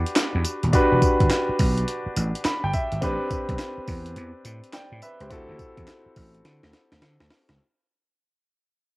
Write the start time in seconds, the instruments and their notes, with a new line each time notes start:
Already playing: grand piano D4 F#4 G4 B4
0.06 closed hi-hat
0.16 snare, clap, closed hi-hat, tambourine
0.35 slap bass E2
0.45 closed hi-hat, tambourine
0.63 slap bass D#1, closed hi-hat
0.73 grand piano D4 F#4 G4 B4, kick, closed hi-hat, tambourine
0.92 slap bass E1
1.02 kick, closed hi-hat, tambourine
1.20 slap bass G1, kick, closed hi-hat
1.30 snare, clap, closed hi-hat, tambourine
1.49 muted slap bass stroke
1.59 slap bass B1, kick, open hi-hat, tambourine
1.77 closed hi-hat
1.88 closed hi-hat
2.06 muted slap bass stroke
2.16 slap bass A1, closed hi-hat, tambourine
2.35 closed hi-hat
2.45 grand piano B5, muted slap bass stroke, snare, clap, closed hi-hat, tambourine
2.63 slap bass G1, grand piano G5
2.73 grand piano E5, kick, closed hi-hat, tambourine
2.92 slap bass G#1, closed hi-hat
3.01 slap bass A1, grand piano C4 D4 G4 B4, kick, closed hi-hat, tambourine
3.31 kick, closed hi-hat, tambourine
3.49 slap bass B1, kick, closed hi-hat
3.59 snare, clap, closed hi-hat, tambourine
3.78 muted slap bass stroke
3.88 slap bass E2, kick, open hi-hat, tambourine
4.06 closed hi-hat
4.16 slap bass E2, closed hi-hat
4.45 slap bass A2, closed hi-hat, tambourine
4.64 closed hi-hat
4.73 grand piano D5 G5, snare, clap, closed hi-hat, tambourine
4.92 slap bass A2
5.02 grand piano B4 E5, closed hi-hat, tambourine
5.20 slap bass C#2, grand piano G4 C5, closed hi-hat
5.30 slap bass D2, grand piano C4 E4 F#4 A4, kick, closed hi-hat, tambourine
5.49 slap bass D2
5.59 kick, closed hi-hat, tambourine
5.77 slap bass E2, kick, closed hi-hat
5.88 snare, clap, closed hi-hat, tambourine
6.06 muted slap bass stroke
6.16 slap bass A1, kick, open hi-hat, tambourine
6.35 closed hi-hat
6.45 slap bass D3, snare, closed hi-hat
6.63 slap bass D2, snare
6.73 snare, closed hi-hat
6.92 slap bass D2, snare, closed hi-hat
7.02 slap bass D3, snare, closed hi-hat
7.20 slap bass D2, snare
7.30 snare, open hi-hat
7.49 slap bass C#2, snare, closed hi-hat